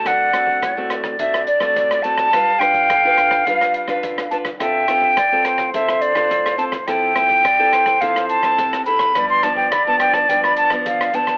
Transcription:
<<
  \new Staff \with { instrumentName = "Flute" } { \time 4/4 \key d \dorian \tempo 4 = 106 fis''4. r8 e''8 d''4 a''8~ | a''8 g''4. f''4 r8 a''8 | g''2 e''8 d''4 a''8 | g''2 f''8 a''4 b''8~ |
b''16 c'''16 a''16 g''16 b''16 a''16 g''16 a''16 g''16 b''16 a''16 r16 f''8 a''8 | }
  \new Staff \with { instrumentName = "Flute" } { \time 4/4 \key d \dorian d''4 d''2. | f''2.~ f''8 r8 | e''4 d''8 c''2~ c''8 | e''4 d''8 c''2 r8 |
d''1 | }
  \new Staff \with { instrumentName = "Nylon-string guitar" } { \time 4/4 \key d \dorian << { <a c' fis'>8 <a c' fis'>8. <a c' fis'>8. <a c' fis'>8 r16 <a c' fis'>8. <a c' fis'>8 | <d' f' b'>16 r16 <d' f' b'>8 r16 <d' f' b'>8. <d' f' b'>8. <d' f' b'>8. <d' f' b'>16 r16 | <c' f' a'>8 <c' f' a'>8 r16 <c' f' a'>8. <c' f' a'>8. <c' f' a'>8. <c' f' a'>16 r16 | <c' e' a'>8 <c' e' a'>8 r16 <c' e' a'>8. <c' e' a'>8. <c' e' a'>8. <c' e' a'>8 |
<f b d'>8 <f b d'>8 r16 <f b d'>8. <f b d'>8. <f b d'>8. <f b d'>8 | } \\ { d4 a,4 d4 a,4 | g4 d4 g4 d4 | d4 a,4 d4 a,4 | f4 c4 f4 c4 |
g,4 d4 g,4 d4 | } >> }
  \new DrumStaff \with { instrumentName = "Drums" } \drummode { \time 4/4 <hh bd ss>8 <hh ss>16 bd16 <hh bd ss>8 <hh ss>16 <bd ss>16 <hh bd>16 ss16 hh16 <bd ss>16 <hh bd>16 <hh ss>16 hh16 <bd ss>16 | <hh bd ss>8 <hh ss>16 <hh bd>16 <hh bd ss>8 <hh ss>16 <bd ss>16 <hh bd>16 <hh ss>16 hh16 <bd ss>16 <hh bd>16 <hh ss>16 hh16 <hh bd ss>16 | <hh bd ss>8 <hh ss>16 bd16 <hh bd ss>8 <hh ss>16 <bd ss>16 <hh bd>16 ss16 hh16 <bd ss>16 <hh bd>16 <hh ss>16 hh16 <bd ss>16 | <hh bd ss>8 <hh ss>16 <hh bd>16 <hh bd ss>8 <hh ss>16 <bd ss>16 <hh bd>16 <hh ss>16 hh16 <bd ss>16 <hh bd>16 <hh ss>16 hh16 <hh bd ss>16 |
<hh bd ss>8 <hh ss>16 bd16 <hh bd ss>8 <hh ss>16 <bd ss>16 <hh bd>16 ss16 hh16 <bd ss>16 <hh bd>16 <hh ss>16 hh16 <bd ss>16 | }
>>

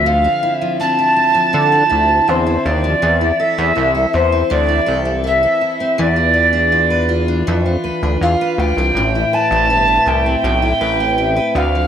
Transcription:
<<
  \new Staff \with { instrumentName = "Recorder" } { \time 4/4 \key a \minor \tempo 4 = 81 f''8 r8 a''2 c''8 d''8~ | d''8 e''4 c''8 d''8 r8 e''4 | d''4. r4. f''8 g''8~ | g''8 a''4 g''2 f''8 | }
  \new Staff \with { instrumentName = "Steel-string acoustic guitar" } { \time 4/4 \key a \minor <d f>16 c'16 e'16 f16 c'16 e'16 c'16 f16 d16 c'16 e'8 c'16 e'16 c'16 f16 | e16 e'16 a'16 c'16 e'16 a'16 e'16 c'16 e16 e'16 a'16 c'16 e'16 a'16 e'16 c'16 | e16 f'16 b'16 d'16 f'16 b'16 f'16 d'16 e16 f'16 b'16 d'16 f'16 b'16 f'16 d'16 | a,16 e'16 b'16 c'16 e'16 b'16 e'16 c'16 a,16 e'16 b'16 c'16 e'16 b'16 d16 f16 | }
  \new Staff \with { instrumentName = "Analog synth bass" } { \clef bass \time 4/4 \key a \minor d,8 r4. d8 d,8 e,8 ees,8 | e,8 r16 e,16 c,8 e,8 d,8 c,4 r8 | e,2 f,8 d,16 d,16 e,16 r16 d,16 c,16 | a,,8 r16 a,,16 g,,8 c,8 b,,8 a,,4 d,8 | }
>>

